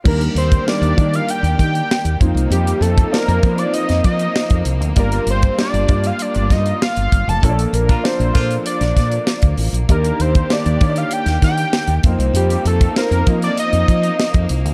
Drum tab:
CC |x---------------|----------------|----------------|----------------|
HH |-xxx-xxxxxxx-xxx|xxxx-xxxxxxx-xxx|xxxx-xxxxxxx-xxx|xxxx-xxxxxxx-xox|
SD |----o-------o---|----o----o--o---|----o-----o-o---|----o----oo-o---|
BD |o--o--o---o---o-|---o--o---o--o--|o--o--o---o---o-|o--o--o---o--o--|

CC |----------------|----------------|
HH |xxxx-xxxxxxx-xxx|xxxx-xxxxxxx-xxx|
SD |----o----oo-o---|----o-------o---|
BD |o--o--o---o---o-|---o--o---o--o--|